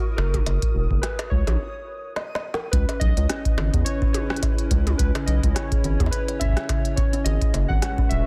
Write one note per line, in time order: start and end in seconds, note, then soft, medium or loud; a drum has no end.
0.00 1.56 E4 medium
0.00 1.56 F#4 medium
0.00 1.56 A#4 loud
0.00 1.60 D#6 medium
0.17 0.41 F#1 medium
0.17 1.05 A#4 loud
0.17 high bongo medium
0.34 kick loud
0.34 closed hi-hat soft
0.34 high tom medium
0.46 0.59 F#1 loud
0.46 closed hi-hat medium
0.46 high bongo medium
0.62 kick loud
0.62 closed hi-hat medium
0.75 0.87 E1 medium
0.91 1.00 F#1 loud
0.91 kick loud
1.02 1.31 B4 medium
1.02 cross-stick loud
1.02 closed hi-hat medium
1.02 high bongo medium
1.19 closed hi-hat medium
1.19 high bongo medium
1.30 1.44 C#2 medium
1.30 2.12 C#5 medium
1.30 kick loud
1.47 1.57 A#1 medium
1.47 closed hi-hat soft
1.47 high tom medium
1.47 high bongo medium
2.16 snare medium
2.35 snare medium
2.54 snare medium
2.71 2.85 C#2 loud
2.71 2.86 C#4 medium
2.71 7.22 C#4 medium
2.71 7.22 E4 loud
2.71 2.98 B4 loud
2.71 4.97 B4 medium
2.71 kick loud
2.71 closed hi-hat medium
2.89 closed hi-hat soft
2.89 high bongo medium
3.00 3.14 B1 medium
3.00 3.88 D#5 loud
3.00 kick loud
3.00 closed hi-hat medium
3.17 3.27 C#2 loud
3.17 3.23 C#5 medium
3.17 closed hi-hat soft
3.29 3.42 C#4 loud
3.29 cross-stick loud
3.29 closed hi-hat medium
3.45 kick loud
3.45 closed hi-hat soft
3.58 3.70 G#1 medium
3.58 3.65 C#3 medium
3.58 high bongo medium
3.74 3.83 E2 medium
3.74 kick loud
3.74 closed hi-hat soft
3.85 3.94 C#4 medium
3.85 4.12 C#5 loud
3.85 closed hi-hat loud
4.02 4.12 C#4 medium
4.02 kick loud
4.13 4.29 G#4 medium
4.13 4.66 C#5 medium
4.13 closed hi-hat medium
4.13 high tom medium
4.30 4.40 C#4 medium
4.30 cross-stick loud
4.36 closed hi-hat soft
4.43 kick loud
4.43 closed hi-hat loud
4.43 high bongo medium
4.58 closed hi-hat soft
4.71 4.94 C#2 medium
4.71 4.79 C#5 medium
4.71 kick loud
4.71 closed hi-hat medium
4.87 4.97 C#4 loud
4.87 closed hi-hat soft
4.87 high tom medium
4.98 5.12 C#2 loud
4.98 5.11 B4 medium
4.98 7.23 C#5 medium
4.98 kick loud
4.98 closed hi-hat loud
5.15 5.21 C#3 medium
5.15 closed hi-hat soft
5.15 high bongo medium
5.26 5.40 B1 medium
5.26 5.56 D#5 medium
5.26 closed hi-hat medium
5.43 5.53 C#2 loud
5.43 5.49 C#4 medium
5.43 kick loud
5.43 closed hi-hat soft
5.54 5.69 C#4 loud
5.54 6.14 C#5 medium
5.54 cross-stick loud
5.54 closed hi-hat medium
5.72 5.84 G#4 medium
5.72 kick loud
5.72 closed hi-hat soft
5.84 5.97 G#1 medium
5.84 5.97 C#4 medium
5.84 closed hi-hat soft
6.00 6.10 E2 medium
6.00 kick loud
6.00 closed hi-hat soft
6.00 high tom medium
6.06 high bongo medium
6.11 6.41 B4 loud
6.11 closed hi-hat medium
6.28 6.34 C#5 medium
6.28 closed hi-hat soft
6.39 6.54 C#4 loud
6.39 6.93 E5 loud
6.39 kick soft
6.39 closed hi-hat medium
6.45 kick medium
6.49 kick medium
6.53 kick medium
6.57 cross-stick loud
6.57 closed hi-hat soft
6.69 6.77 C#3 medium
6.69 kick loud
6.69 closed hi-hat loud
6.69 high bongo medium
6.85 closed hi-hat soft
6.96 7.05 C#4 medium
6.96 7.26 C#5 loud
6.96 kick loud
6.96 closed hi-hat medium
7.13 7.23 C#4 loud
7.13 closed hi-hat soft
7.24 7.38 G#1 loud
7.24 8.27 G#3 medium
7.24 8.27 F#4 medium
7.24 7.41 G#4 medium
7.24 8.27 B4 loud
7.24 7.71 D#5 loud
7.24 closed hi-hat loud
7.42 7.52 C#4 medium
7.42 kick loud
7.42 closed hi-hat soft
7.54 7.67 F#1 medium
7.54 closed hi-hat medium
7.54 high bongo medium
7.68 7.80 G#1 loud
7.68 8.11 F#5 loud
7.68 kick loud
7.82 7.90 C#5 medium
7.82 cross-stick loud
7.82 closed hi-hat medium
7.98 8.08 C#4 loud
7.98 kick loud
8.09 8.23 D#1 medium
8.09 8.27 E5 loud
8.09 closed hi-hat soft